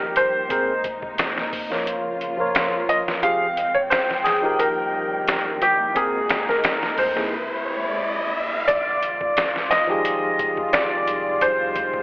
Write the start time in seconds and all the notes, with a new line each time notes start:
Already playing: F1 D#3 F3 G3 A#3 D#4 G4 A#4
0.16 F1 C5, closed hi-hat
0.49 C3 G#3 C4 D#4 G#4 A#4, kick, closed hi-hat
0.84 kick, closed hi-hat
1.02 F1, kick
1.18 snare, closed hi-hat
1.38 snare
1.53 F1, kick, open hi-hat
1.70 F3 F4 A#4 C#5, snare
1.87 C#3 F3 F4, closed hi-hat
2.21 closed hi-hat
2.37 F3 F4 A#4
2.41 C#5
2.55 snare, closed hi-hat
2.89 D#5, closed hi-hat
3.08 snare
3.22 F1 F3 G#3 C4 F4 G4 G#4 F5 G5, kick, closed hi-hat, riser
3.57 closed hi-hat
3.75 F1 C#5, kick
3.90 C5, snare, closed hi-hat
4.11 snare
4.24 F1 G#4, snare, closed hi-hat
4.42 F3 D#4 G4 A#4
4.59 D#3 G3 A#3 A#4, closed hi-hat
4.94 F1
5.28 snare, closed hi-hat
5.62 F1 G4, closed hi-hat
5.95 C3 G#3 C4 D#4 G#4 A#4, kick, closed hi-hat
6.29 snare, closed hi-hat
6.48 F1 A#4, snare
6.64 snare, closed hi-hat
6.83 snare
6.98 C2 C5, kick, open hi-hat
7.15 C3 A#3 D#4 E4 G#4, snare
7.33 G#3 E4
8.68 F1 D#3 G#3 F4 D5, kick, closed hi-hat
9.03 closed hi-hat
9.21 F1, kick
9.37 snare, closed hi-hat
9.56 snare
9.71 D#1 D#5, snare, closed hi-hat
9.87 F3 D#4 G4
9.91 G#4
10.05 closed hi-hat
10.39 F1, kick, closed hi-hat
10.57 kick
10.73 D5, snare, closed hi-hat
11.07 C2, closed hi-hat
11.41 C5, kick, closed hi-hat
11.76 kick, closed hi-hat
11.94 F1, kick